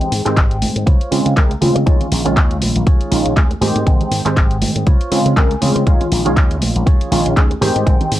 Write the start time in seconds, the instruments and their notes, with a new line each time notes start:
Already playing: analog polysynth D#3 G#3 C4 G5, clean electric guitar G4 G#4 C5
0.01 closed hi-hat, low conga, shaker
0.12 slap bass G#2, open hi-hat, shaker
0.25 slap bass G#2, analog polysynth D#3 G#3 C4 G5, clean electric guitar G4 G#4 C5, clap, closed hi-hat
0.37 slap bass G#1, kick, clap, closed hi-hat
0.51 closed hi-hat
0.61 slap bass G#2, open hi-hat, high conga, shaker
0.76 slap bass G#2, closed hi-hat, shaker
0.86 slap bass C#2, clean electric guitar F4 C5 C#5, kick, closed hi-hat
1.01 muted slap bass stroke, closed hi-hat
1.11 analog polysynth C#3 G#3 C4 F4, slap bass C#3, open hi-hat
1.26 slap bass C#3, closed hi-hat
1.36 slap bass C#2, analog polysynth C#3 G#3 C4 A#4, kick, clap, closed hi-hat, high conga, shaker
1.50 muted clean electric guitar stroke, closed hi-hat
1.61 analog polysynth C#3 G#3 C4 F4, slap bass C#3, open hi-hat, high conga, low conga, shaker
1.75 slap bass C#3, muted clean electric guitar stroke, closed hi-hat, shaker
1.86 slap bass D#2, analog polysynth D#3 G#3 C#4 F4, clean electric guitar F4 G#4 C#5, kick, closed hi-hat, shaker
2.01 closed hi-hat, low conga, shaker
2.12 slap bass A#1, open hi-hat, shaker
2.25 slap bass A#1, analog polysynth D#3 G#3 C#4 F4, clean electric guitar F4 G#4 C#5, closed hi-hat
2.37 slap bass D#2, kick, clap, closed hi-hat
2.51 closed hi-hat
2.61 slap bass A#1, open hi-hat, high conga, shaker
2.76 slap bass A#1, closed hi-hat, shaker
2.86 clean electric guitar F4 G#4 C#5, kick, closed hi-hat
3.01 muted slap bass stroke, closed hi-hat
3.11 slap bass A#1, analog polysynth D#3 G#3 C#4 F4, open hi-hat
3.26 slap bass A#1, closed hi-hat
3.36 analog polysynth D#3 G#3 C#4 G#4, kick, clap, closed hi-hat, high conga, shaker
3.50 muted clean electric guitar stroke, closed hi-hat
3.61 slap bass G#2, analog polysynth D#3 G#3 C4 G4, clean electric guitar G4 G#4 C5, open hi-hat, high conga, low conga, shaker
3.75 slap bass G#2, closed hi-hat, shaker
3.86 slap bass G#1, analog polysynth D#3 G#3 C4 G5, kick, closed hi-hat
4.01 closed hi-hat, low conga, shaker
4.11 slap bass G#2, open hi-hat, shaker
4.25 slap bass G#2, analog polysynth D#3 G#3 C4 G5, clean electric guitar G4 G#4 C5, clap, closed hi-hat
4.37 slap bass G#1, kick, clap, closed hi-hat
4.51 closed hi-hat
4.62 slap bass G#2, open hi-hat, high conga, shaker
4.76 slap bass G#2, closed hi-hat, shaker
4.86 slap bass C#2, clean electric guitar F4 C5 C#5, kick, closed hi-hat, shaker
5.01 closed hi-hat
5.11 analog polysynth C#3 G#3 C4 F4, slap bass C#3, open hi-hat
5.26 slap bass C#3, closed hi-hat
5.36 slap bass C#2, analog polysynth C#3 G#3 C4 A#4, clean electric guitar G#5, kick, clap, closed hi-hat, high conga, shaker
5.51 muted clean electric guitar stroke, closed hi-hat, shaker
5.61 analog polysynth C#3 G#3 C4 F4, slap bass C#3, clean electric guitar C#5, open hi-hat, high conga, low conga, shaker
5.75 slap bass C#3, muted clean electric guitar stroke, closed hi-hat
5.86 slap bass D#2, analog polysynth D#3 G#3 C#4 F4, clean electric guitar F4 G#4 C#5, kick, closed hi-hat
6.01 closed hi-hat, low conga, shaker
6.12 slap bass A#1, open hi-hat, shaker
6.25 slap bass A#1, analog polysynth D#3 G#3 C#4 F4, clean electric guitar F4 G#4 C#5, closed hi-hat
6.37 slap bass D#2, kick, clap, closed hi-hat
6.51 closed hi-hat
6.62 slap bass A#1, open hi-hat, high conga, shaker
6.76 slap bass A#1, closed hi-hat, shaker
6.86 clean electric guitar F4 G#4 C#5, kick, closed hi-hat
7.01 muted slap bass stroke, closed hi-hat
7.11 slap bass A#1, analog polysynth D#3 G#3 C#4 F4, open hi-hat
7.26 slap bass A#1, closed hi-hat
7.36 slap bass D#2, analog polysynth D#3 G#3 C#4 G#4, kick, clap, closed hi-hat, high conga, shaker
7.51 muted clean electric guitar stroke, closed hi-hat
7.61 slap bass G#2, analog polysynth D#3 G#3 C4 G4, clean electric guitar G4 G#4 C5, open hi-hat, high conga, low conga, shaker
7.76 slap bass G#2, closed hi-hat, shaker
7.86 slap bass G#1, analog polysynth D#3 G#3 C4 G5, kick, closed hi-hat
8.01 closed hi-hat, low conga, shaker
8.12 slap bass G#2, open hi-hat, shaker